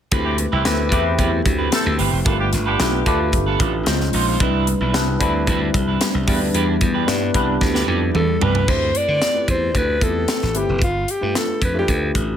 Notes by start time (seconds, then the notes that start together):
0.11 D2 A3 C4 E4 G4 B4, kick, closed hi-hat, muted conga
0.25 C4 E4 G4
0.38 muted clean electric guitar stroke, closed hi-hat, muted conga
0.52 C2 E3 C4 E4 G4 B4
0.65 D2 A3 C4 E4 G4 B4, muted clean electric guitar stroke, snare, closed hi-hat, high conga
0.79 muted clean electric guitar stroke
0.91 E2 A3 C4 E4 G4 B4, kick, closed hi-hat
1.05 muted clean electric guitar stroke
1.18 E2 C4 G4 B4, kick, closed hi-hat, muted conga, low conga
1.32 muted clean electric guitar stroke
1.45 D2, muted clean electric guitar stroke, kick, closed hi-hat, low conga
1.58 C4 G4 B4
1.72 C4 E4 A4, snare, closed hi-hat, high conga
1.85 D2, muted clean electric guitar stroke
1.98 G1 C4 G4 B4, open hi-hat, high conga
2.12 F1, muted clean electric guitar stroke
2.25 G1 A3 D4 F4 G4 A4 A#4 B4, kick, closed hi-hat, muted conga
2.33 B4
2.39 B3 D4 G4, muted clean electric guitar stroke
2.52 G1, muted clean electric guitar stroke, snare, closed hi-hat, muted conga
2.66 B3 D4 F4 G4 A4 B4
2.79 B1 A3 D4 F4 G4 B4, muted clean electric guitar stroke, snare, closed hi-hat, high conga
2.93 muted clean electric guitar stroke
3.06 D2 A3 D4 F4 G4 A4 B4 D5, kick, closed hi-hat
3.20 muted clean electric guitar stroke
3.32 G1, muted clean electric guitar stroke, kick, closed hi-hat, muted conga, low conga
3.46 F4 A4 B4
3.59 A1 F4 A4 D5, kick, closed hi-hat, muted conga, low conga
3.74 muted clean electric guitar stroke
3.86 C#2 G#3 C#4 D#4 E4 C5, muted clean electric guitar stroke, snare, closed hi-hat, high conga
3.94 F4
4.00 muted clean electric guitar stroke, snare
4.13 A#1 D#4 F4 C5, open hi-hat, high conga
4.28 D#4 F4 C5
4.40 C2 G3 C4 D4 D#4 E4 B4, kick, closed hi-hat, muted conga
4.47 E4
4.67 muted clean electric guitar stroke, closed hi-hat, muted conga
4.80 B1 D4 E4 B4
4.93 C2 G3 C4 D4 E4 B4, snare, closed hi-hat, high conga
5.08 muted clean electric guitar stroke
5.20 D2 G3 C4 D4 E4 B4, kick, closed hi-hat
5.34 muted clean electric guitar stroke
5.47 D2 D4 E4 B4, kick, closed hi-hat, muted conga, low conga
5.61 muted clean electric guitar stroke
5.74 C2, muted clean electric guitar stroke, kick, closed hi-hat, muted conga, low conga
5.87 D4 E4 B4
6.01 snare, closed hi-hat, high conga
6.14 C2, muted clean electric guitar stroke
6.27 E2 G3 B3 D4 E4 G4 A#4 B4, kick, open hi-hat, high conga
6.34 B4
6.41 D2, muted clean electric guitar stroke
6.54 E2 D4 G4 B4, closed hi-hat, muted conga
6.68 muted clean electric guitar stroke
6.81 E2, muted clean electric guitar stroke, kick, closed hi-hat, muted conga
6.94 D4 G4 B4
7.07 G2 G3 B3 D4 E4 B4, snare, closed hi-hat, high conga
7.22 muted clean electric guitar stroke
7.34 C2 G3 B3 D4 E4 G4 B4 D5, kick, closed hi-hat
7.48 muted clean electric guitar stroke
7.61 D2, muted clean electric guitar stroke, kick, snare, muted conga, low conga
7.74 D4 G4 B4, snare
7.88 F2 D4 G4 D5, muted conga, low conga
8.02 muted clean electric guitar stroke
8.15 E2 A4, muted clean electric guitar stroke, mid tom, high conga
8.28 muted clean electric guitar stroke, high conga
8.41 C2 D4 G4 B4, floor tom, high conga
8.54 D4 G4 B4, floor tom
8.67 D2 A3 C4 E4 G4 B4 C5, kick, crash
8.95 D5, closed hi-hat
9.08 D3
9.22 snare, closed hi-hat
9.34 A3 C4 E4 F4 B4
9.41 G4
9.48 E2 C5, kick, closed hi-hat
9.75 D2 B4, kick, closed hi-hat
10.01 E2 A3 C4 E4 F4 A4 B4, kick, closed hi-hat
10.08 G4
10.28 snare, closed hi-hat
10.42 A1, snare
10.54 G1 A3 C4 E4 G4 B4, closed hi-hat
10.69 F1
10.82 G1 F4, kick, closed hi-hat
11.08 G4, closed hi-hat
11.21 G2 A3 D4 F4 G4 B4
11.35 A4, snare, closed hi-hat
11.62 F2 B4, kick, closed hi-hat
11.74 A3 D4 F4 G4 A4
11.79 G4 B4
11.88 D2, kick, closed hi-hat
12.15 A1, kick, closed hi-hat